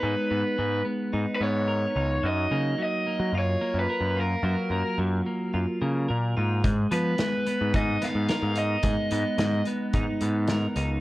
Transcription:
<<
  \new Staff \with { instrumentName = "Overdriven electric guitar" } { \time 4/4 \key gis \dorian \tempo 4 = 109 b'4. r8. r32 b'32 cis''4. | dis''4 dis''4 cis''8. b'8. ais'8~ | ais'4 r2. | r8 b'4. dis''8 eis''4 dis''8~ |
dis''4. r2 r8 | }
  \new Staff \with { instrumentName = "Clean electric guitar" } { \time 4/4 \key gis \dorian <gis b dis' ais'>8 b8 gis8 b8 dis'8 b8 ais'8 dis'8 | fis8 ais8 fis8 ais8 eis'8 ais8 ais'8 eis'8 | fis8 ais8 fis8 ais8 eis'8 ais8 ais'8 eis'8 | gis8 b8 gis8 b8 dis'8 b8 ais'8 dis'8 |
gis8 b8 gis8 b8 dis'8 b8 ais'8 dis'8 | }
  \new Staff \with { instrumentName = "Picked electric bass" } { \clef bass \time 4/4 \key gis \dorian gis,16 r16 gis,16 r16 gis,8 r8 gis,16 r16 gis,4 cis,8 | fis,8 cis8 r8. fis16 fis,8 r16 fis,16 r16 fis,8. | fis,16 r16 fis,16 r16 fis,8 r8 fis,16 r16 cis8 ais,8 gis,8 | gis,8 eis8 r8. gis,16 gis,8 r16 gis,16 r16 gis,8. |
gis,16 r16 gis,16 r16 gis,8 r8 gis,16 r16 gis,4 cis,8 | }
  \new DrumStaff \with { instrumentName = "Drums" } \drummode { \time 4/4 r4 r4 r4 r4 | r4 r4 r4 r4 | r4 r4 r4 r4 | <hh bd>8 hh8 <hh sn>8 hh8 <hh bd>8 <hh sn>8 <hh sn>8 hh8 |
<hh bd>8 hh8 <hh sn>8 hh8 <hh bd>8 hh8 <hh sn>8 hh8 | }
>>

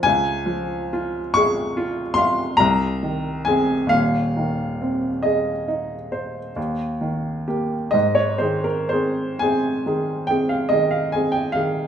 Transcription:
\new Staff \with { instrumentName = "Upright piano" } { \time 9/8 \key aes \major \tempo 4. = 45 << { aes''4. des'''4 c'''8 bes''4 aes''8 | f''4. ees''2~ ees''8 r8 | ees''16 des''16 c''16 bes'16 c''8 aes''4 g''16 f''16 ees''16 f''16 aes''16 g''16 f''8 | } \\ { des,8 f8 f'8 aes'8 f'8 f''8 c,8 ees8 <c' aes'>8 | <ees,, ees,>8 ees8 c'8 aes'8 ees'8 c''8 ees,8 ees8 <bes g'>8 | aes,8 <ees aes'>8 <c' aes'>8 <c' aes'>8 <ees aes'>8 <c' aes'>8 <ees aes'>8 <c' aes'>8 <ees aes'>8 | } >> }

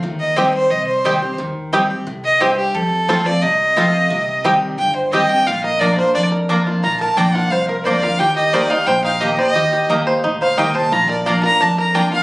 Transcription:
<<
  \new Staff \with { instrumentName = "Fiddle" } { \time 4/4 \key bes \major \tempo 4 = 176 r8 ees''8 c''8 c''8 ees''8 c''4. | r2 r8 ees''8 c''8 g'8 | a'4. d''8 ees''2~ | ees''4 r4 g''8 c''8 ees''8 g''8 |
f''8 ees''8 d''8 c''8 d''8 r4. | bes''8 a''8 g''8 fis''8 f''8 bes'8 d''8 f''8 | g''8 ees''8 d''8 f''8 g''8 f''8 ees''8 ees''8~ | ees''4 r4. f''8 g''8 a''8 |
bes''8 d''8 f''8 bes''8 a''8 bes''8 g''8 f''8 | }
  \new Staff \with { instrumentName = "Mandolin" } { \time 4/4 \key bes \major r4 <c' g' ees'' g''>16 r4. r16 <c' g' ees'' g''>16 r8. | r4 <c' g' ees'' g''>16 r4. r16 <c' g' ees'' g''>16 r8. | r4 <c' f' c'' a''>16 r4. r16 <c' f' c'' a''>16 r8. | r4 <c' g' ees'' g''>16 r4. r16 <c' g' ees'' g''>16 r8. |
r4 <bes f' d'' bes''>16 r4. r16 <bes f' d'' bes''>16 r8. | r4 <bes f' d'' bes''>16 r4. r16 <bes f' d'' bes''>16 r8. | r4 <bes g' ees'' bes''>16 r4. r16 <bes g' ees'' bes''>16 r8. | r4 <bes g' ees'' bes''>16 r4. r16 <bes g' ees'' bes''>16 r8. |
r4 <bes f' d'' bes''>16 r4. r16 <bes f' d'' bes''>16 r8. | }
  \new Staff \with { instrumentName = "Five-string banjo" } { \time 4/4 \key bes \major r4 <c' g'>8 r4. <c' g'>8 r8 | r4 <c' g'>8 r4. <c' g'>8 r8 | r4 <c' f' a'>8 r4. <c' f' a'>8 r8 | r4 <c' g'>8 r4. <c' g'>8 r8 |
f'8 bes'8 d'8 bes'8 d'8 bes'8 d'8 f'8 | f'8 bes'8 d'8 f'8 c''8 bes'8 c''8 bes'8 | g'8 g'8 c''8 ees'8 c''8 ees'8 g'8 c''8 | g'8 g'8 ees'8 c''8 ees'8 c''8 ees'8 c''8 |
f'8 bes'8 d'8 bes'8 d'8 bes'8 d'8 f'8 | }
  \new Staff \with { instrumentName = "Steel-string acoustic guitar" } { \time 4/4 \key bes \major << { r4 <ees g c' g'>4 r4 <ees g c' g'>8 <c' g'>8 | r4 <ees g c' g'>8 <c' g'>8 r2 | r4 <f a c' f'>8 <c' f'>8 r4 <f a c' f'>4 | r4 <ees g c' g'>4 r4 <ees g c' g'>8 <c' g'>8 |
r4 <f bes d' f'>8 <d' f'>8 r4 <f bes d' f'>4 | r4 <f bes d' f'>4 r4 <f bes d' f'>8 <d' f'>8 | r4 <ees bes ees' g'>8 <ees' g'>8 r4 <ees bes ees' g'>8 <ees' g'>8 | r4 <ees bes ees' g'>4 r4 <ees bes ees' g'>4 |
r4 <f bes d' f'>8 <d' f'>8 r4 <f bes d' f'>4 | } \\ { ees2 g2 | ees2 a,4 g,4 | f,2 c2 | c2 g,2 |
bes,2 f,2 | bes,2 f,2 | ees2 bes,2 | ees2 bes,2 |
bes,2 f,2 | } >> }
  \new Staff \with { instrumentName = "Upright bass" } { \clef bass \time 4/4 \key bes \major ees,2 c2 | ees,2 c2 | f,2 c,2 | c,2 g,,2 |
bes,,2 f,2 | bes,,4 bes,,4 c,4 d,4 | ees,2 bes,,2 | ees,2 d,4 c,4 |
bes,,2 f,2 | }
>>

